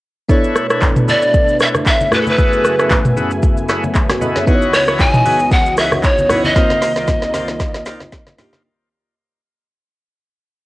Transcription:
0.29 B2 A3 B3 D4 E4 A4 B4 C#5 E5, kick, shaker
0.44 shaker
0.56 cross-stick, shaker
0.70 D4 E4 A4 B4 C#5, cross-stick, shaker
0.82 kick, clap, low conga, shaker
0.96 mid tom, shaker
1.08 D4 E4 A4 B4 C#5 D5, high conga, shaker
1.22 shaker
1.34 kick, shaker
1.48 shaker
1.60 D4 E4 A4 B4 C#5 E5, cross-stick, shaker
1.75 cross-stick, high conga, shaker
1.86 E5, kick, clap, shaker
2.01 high conga, shaker
2.11 F#2 C#3 A3 B3 E4 F#4 G#4 A4 B4 G#5, cross-stick, low conga, shaker
2.21 A4
2.27 B4, high conga, shaker
2.38 E4 F#4 G#4 A4 B4, kick, shaker
2.53 shaker
2.64 cross-stick, shaker
2.79 E4 F#4 G#4 A4 B4, cross-stick, shaker
2.90 kick, clap, low conga, shaker
3.05 mid tom, shaker
3.16 E4 F#4 G#4 A4 B4, high conga, shaker
3.31 shaker
3.43 kick, shaker
3.57 shaker
3.69 E4 F#4 G#4 A4 B4, cross-stick, snare, shaker
3.84 high conga, shaker
3.95 kick, clap, shaker
4.09 F#4 B4, cross-stick, snare, high conga, shaker
4.21 E4 F#4 G#4 A4 B4 D#5, low conga, shaker
4.35 G#4 C#5, snare, high conga, shaker
4.46 C#2 E3 B3 D#4 E4 F#4 B4 C#5 D#5, kick, shaker
4.55 C#5
4.62 shaker
4.73 C#5, cross-stick, open hi-hat, shaker
4.87 E4 F#4 B4 C#5 D#5, cross-stick, shaker
4.99 G#5, kick, clap, low conga, shaker
5.14 mid tom, shaker
5.25 E4 F#4 B4 C#5 D#5, open hi-hat, high conga, shaker
5.39 shaker
5.51 F#5, kick, shaker
5.66 shaker
5.77 E4 F#4 B4 C#5 D#5 E5, cross-stick, open hi-hat, shaker
5.92 cross-stick, high conga, shaker
6.03 C#5, kick, clap, shaker
6.18 high conga, shaker
6.29 B3 D#4 E4 F#4 B4 C#5 D#5, cross-stick, open hi-hat, low conga, shaker
6.44 D#5, high conga, shaker
6.55 C2 C3 D#3 A#3 C4 D#4 F4 A#4 C5 D#5, kick, snare, shaker
6.70 snare, high conga, shaker
6.82 snare, open hi-hat, shaker
6.96 D#4 F4 A#4 C5 D5, snare, shaker
7.08 kick, snare, low conga, shaker
7.22 snare, shaker
7.34 D#4 F4 A#4 C5 D5, snare, open hi-hat, high conga, shaker
7.48 snare, shaker
7.60 kick, snare, shaker
7.75 snare, shaker
7.86 D#4 F4 A#4 C5 D5, snare, open hi-hat, shaker
8.00 snare, high conga, shaker
8.12 kick, snare, shaker
8.27 snare, high conga, shaker
8.37 A#3 D4 D#4 F4 G4 A#4 C5 D5, snare, open hi-hat, low conga, shaker
8.53 snare, high conga, shaker

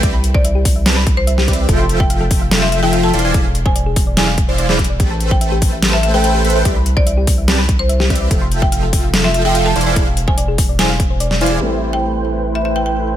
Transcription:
0.03 C2 C4 G4 D5 E5, kick, closed hi-hat
0.14 B5
0.24 closed hi-hat
0.34 C5 D5, kick
0.45 E5, closed hi-hat
0.55 G4
0.65 kick, open hi-hat
0.76 E5
0.86 C4 G4 B4 D5 A5, snare, closed hi-hat
0.97 B5
1.07 kick, closed hi-hat
1.17 C5
1.27 E5, closed hi-hat
1.38 G4, snare
1.48 C4 G4 B4 D5 E5, kick, closed hi-hat
1.53 closed hi-hat
1.59 E5
1.69 F1 F3 F4 A4 E5 G5, kick, closed hi-hat
1.79 C6
1.89 closed hi-hat
2.00 E5 G5, kick
2.10 F5, closed hi-hat
2.21 A4
2.31 kick, open hi-hat
2.42 F5
2.51 A4, snare, closed hi-hat
2.62 E5 C6
2.72 E5, closed hi-hat
2.83 F3 F4 A4 E5 G5
2.93 F5, closed hi-hat
3.03 A4 A5
3.14 E1 E3 E4 C5 D5 F5 C6, closed hi-hat
3.19 closed hi-hat
3.24 E3 E4 C5 D5 F5 G#5
3.34 E3 E4 G#4 C5 D5 F5 G#5, kick, closed hi-hat
3.45 F5
3.55 closed hi-hat
3.66 C5 G#5, kick
3.76 D5, closed hi-hat
3.86 G#4
3.96 kick, open hi-hat
4.07 D5
4.17 E3 E4 G#4 C5 D5 F5 G#5 C6, snare, closed hi-hat
4.28 F5
4.38 kick, closed hi-hat
4.48 E3 E4 C5 D5 F5 C6
4.58 D5, closed hi-hat
4.69 E3 E4 G#4 C5 D5 F5 B5, snare
4.79 kick, closed hi-hat
4.84 closed hi-hat
4.90 D5
5.00 A1 A3 G4 A4 B4 C5 G5, kick, closed hi-hat
5.10 A5
5.20 closed hi-hat
5.31 C5 G5, kick
5.41 E5, closed hi-hat
5.52 G4
5.62 kick, open hi-hat
5.73 E5
5.82 G4, snare, closed hi-hat
5.93 E5 A5
6.03 E5, closed hi-hat
6.14 A3 A4 B4 C5 G5
6.24 E5 G5, closed hi-hat
6.35 G4
6.45 A3 A4 B4 C5 B5, closed hi-hat
6.50 closed hi-hat
6.55 A3 A4 B4 C5 E5 G5
6.65 C2 C4 G4 D5 E5, kick, closed hi-hat
6.76 B5
6.86 closed hi-hat
6.97 C5 D5, kick
7.07 E5, closed hi-hat
7.17 G4
7.27 kick, open hi-hat
7.38 E5
7.48 C4 G4 B4 D5 A5, snare, closed hi-hat
7.59 B5
7.69 kick, closed hi-hat
7.79 C5
7.89 E5, closed hi-hat
8.00 G4, snare
8.10 C4 G4 B4 D5 E5, kick, closed hi-hat
8.16 closed hi-hat
8.21 E5
8.31 F1 F3 F4 A4 E5 G5, kick, closed hi-hat
8.42 C6
8.52 closed hi-hat
8.62 E5 G5, kick
8.72 F5, closed hi-hat
8.83 A4
8.93 kick, open hi-hat
9.04 F5
9.13 A4, snare, closed hi-hat
9.24 E5 C6
9.34 E5, closed hi-hat
9.45 F3 F4 A4 E5 G5
9.55 F5, closed hi-hat
9.66 A4 A5
9.76 E1 E3 E4 C5 D5 F5 C6, closed hi-hat
9.81 closed hi-hat
9.86 E3 E4 C5 D5 F5 G#5
9.96 E3 E4 G#4 C5 D5 F5 G#5, kick, closed hi-hat
10.07 F5
10.17 closed hi-hat
10.28 C5 G#5, kick
10.38 D5, closed hi-hat
10.48 G#4
10.58 kick, open hi-hat
10.69 D5
10.79 E3 E4 G#4 C5 D5 F5 G#5 C6, snare, closed hi-hat
10.90 F5
11.00 kick, closed hi-hat
11.10 C5
11.20 D5, closed hi-hat
11.31 D5, snare
11.41 E3 E4 C5 D5 F5 G#5, closed hi-hat
11.46 closed hi-hat
11.52 G#4
11.60 A1 G3 A3 C4 E4 B4 C5 G5
11.64 A4
11.93 G5
12.55 E5
12.65 E5
12.76 G5
12.86 G5

